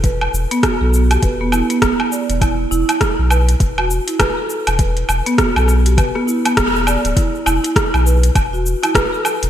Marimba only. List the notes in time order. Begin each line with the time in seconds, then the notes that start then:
0.04 B4
0.51 B3
0.63 F#4
0.81 A4
1.11 G4
1.23 B4
1.41 B3
1.53 E4
1.70 B3
2.12 D5
2.42 E4
2.71 E4
2.89 E4
3.30 B4
3.78 F#4
4.08 E4
4.19 B4
4.37 A4
4.79 B4
5.26 B3
5.38 F#4
5.56 A4
5.86 G4
5.97 B4
6.15 B3
6.27 E4
6.45 B3
6.87 D5
7.16 E4
7.46 E4
7.64 E4
8.06 B4
8.53 F#4
8.83 E4
8.95 B4
9.13 A4